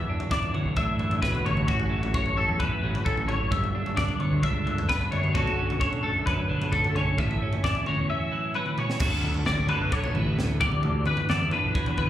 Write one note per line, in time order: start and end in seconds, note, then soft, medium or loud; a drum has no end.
0.00 1.43 E2 medium
0.00 0.12 E3 medium
0.00 0.54 F#3 medium
0.00 0.31 E5 medium
0.09 0.76 D4 soft
0.20 floor tom medium
0.31 0.99 E3 medium
0.31 0.54 D5 medium
0.31 kick loud
0.31 snare medium
0.43 floor tom medium
0.54 1.22 F#3 soft
0.54 0.77 C#5 medium
0.54 mid tom medium
0.65 0.76 B1 medium
0.76 1.24 A2 medium
0.76 1.43 D4 medium
0.76 1.22 E5 medium
0.76 kick loud
0.76 floor tom medium
0.76 mid tom medium
0.99 1.89 E3 medium
0.99 floor tom medium
1.11 floor tom medium
1.22 1.44 B1 medium
1.22 2.13 F#3 medium
1.22 1.45 B4 medium
1.22 kick loud
1.22 snare medium
1.35 floor tom medium
1.44 1.67 A1 medium
1.44 3.27 A2 medium
1.44 1.68 C#5 medium
1.44 floor tom medium
1.44 mid tom medium
1.57 mid tom medium
1.68 2.44 A1 medium
1.68 2.36 C#4 medium
1.68 2.14 F#4 medium
1.68 kick loud
1.68 floor tom medium
1.80 floor tom medium
1.90 2.59 E3 soft
2.03 floor tom medium
2.14 2.82 F#3 medium
2.14 2.37 C#5 medium
2.14 kick loud
2.26 floor tom medium
2.37 3.04 C#4 soft
2.37 2.60 A4 medium
2.49 2.59 E2 medium
2.60 2.71 E2 medium
2.60 3.26 E3 medium
2.60 3.05 B4 medium
2.60 kick loud
2.60 floor tom medium
2.83 2.93 A1 medium
2.83 4.20 F#3 soft
2.95 floor tom medium
3.05 3.48 A1 medium
3.05 3.26 C#4 medium
3.05 3.28 A4 medium
3.05 kick loud
3.17 floor tom medium
3.28 3.51 A2 medium
3.28 3.51 C#5 medium
3.28 floor tom medium
3.50 3.73 G1 medium
3.50 5.31 G2 medium
3.50 3.97 E5 medium
3.50 kick loud
3.50 floor tom medium
3.64 floor tom medium
3.75 4.42 D4 soft
3.86 floor tom medium
3.96 4.64 D3 medium
3.96 4.20 D5 medium
3.96 kick loud
3.96 snare medium
4.09 floor tom medium
4.20 4.89 B3 soft
4.20 4.43 C#5 medium
4.20 mid tom medium
4.32 4.42 D2 medium
4.43 4.89 C#2 medium
4.43 5.11 D4 medium
4.43 4.88 E5 medium
4.43 kick loud
4.43 floor tom medium
4.43 mid tom medium
4.66 5.34 D3 medium
4.66 floor tom medium
4.78 floor tom medium
4.89 5.10 G2 medium
4.89 5.36 B3 medium
4.89 5.11 B4 medium
4.89 kick loud
4.89 snare medium
5.01 floor tom medium
5.12 5.33 F#2 medium
5.12 5.32 D4 medium
5.12 5.35 C#5 medium
5.12 floor tom medium
5.12 mid tom medium
5.24 mid tom medium
5.34 6.11 B1 medium
5.34 5.80 B2 medium
5.34 5.79 D3 medium
5.34 6.03 A3 medium
5.34 5.58 C#4 medium
5.34 7.19 D4 medium
5.34 5.80 F#4 medium
5.34 kick loud
5.34 floor tom medium
5.47 floor tom medium
5.59 6.26 C#4 medium
5.70 floor tom medium
5.80 6.48 D3 medium
5.80 6.03 C#5 medium
5.80 kick loud
5.93 floor tom medium
6.03 6.73 A3 soft
6.03 6.26 A4 medium
6.16 6.26 F#2 medium
6.26 6.37 F#2 medium
6.26 6.95 C#4 medium
6.26 6.72 B4 medium
6.26 kick medium
6.26 floor tom medium
6.49 6.61 B1 medium
6.49 7.18 D3 medium
6.62 floor tom medium
6.72 7.15 B1 medium
6.72 7.88 A3 medium
6.72 6.95 A4 medium
6.72 kick medium
6.84 floor tom medium
6.95 7.16 C#4 soft
6.95 7.18 C#5 medium
6.95 floor tom medium
7.18 7.39 A1 medium
7.18 9.01 A2 medium
7.18 7.64 E5 medium
7.18 kick medium
7.18 floor tom medium
7.31 floor tom medium
7.42 8.09 C#4 soft
7.53 floor tom medium
7.64 8.31 E3 medium
7.64 7.86 D5 medium
7.64 kick loud
7.64 snare medium
7.75 floor tom medium
7.86 8.55 F#3 soft
7.86 8.09 C#5 medium
7.86 mid tom medium
7.99 8.09 E2 medium
8.10 8.77 C#4 medium
8.10 8.55 E5 medium
8.32 8.98 E3 medium
8.54 9.45 F#3 medium
8.54 8.78 B4 medium
8.54 high tom medium
8.66 mid tom soft
8.78 8.98 C#4 medium
8.78 9.01 C#5 medium
8.78 mid tom medium
8.90 snare medium
9.00 9.43 D2 medium
9.00 10.60 D2 medium
9.00 9.69 F#4 medium
9.00 9.46 A4 medium
9.00 kick loud
9.00 floor tom medium
9.00 crash loud
9.23 mid tom medium
9.34 floor tom medium
9.45 9.57 A1 medium
9.45 10.64 F#3 medium
9.45 9.69 D5 medium
9.45 snare medium
9.45 mid tom medium
9.58 9.68 D2 medium
9.69 11.29 D3 medium
9.69 10.58 A4 medium
9.69 9.92 B4 medium
9.69 floor tom medium
9.81 9.92 B1 medium
9.92 10.05 A3 medium
9.92 10.15 C#5 medium
9.92 kick loud
10.04 10.14 B1 medium
10.04 10.62 B3 soft
10.04 floor tom medium
10.15 10.36 A1 medium
10.15 10.61 A2 medium
10.15 10.60 B4 medium
10.15 mid tom medium
10.38 10.59 D2 medium
10.38 snare medium
10.61 12.10 E2 medium
10.61 10.82 E2 medium
10.61 11.78 G4 medium
10.61 11.06 D5 medium
10.61 kick loud
10.61 floor tom medium
10.72 mid tom medium
10.83 11.05 D2 loud
10.83 floor tom medium
11.06 11.29 B4 medium
11.06 mid tom medium
11.17 floor tom medium
11.29 11.40 E2 medium
11.29 12.10 E3 medium
11.29 11.52 D5 medium
11.29 snare medium
11.29 mid tom medium
11.42 11.52 E2 medium
11.51 12.10 D4 medium
11.51 11.97 B4 medium
11.51 floor tom medium
11.64 11.74 B1 medium
11.75 12.10 B2 medium
11.75 12.10 F#3 medium
11.75 kick loud
11.86 12.10 E2 medium
11.86 floor tom medium
11.97 12.10 B4 medium
11.97 kick medium
11.97 mid tom medium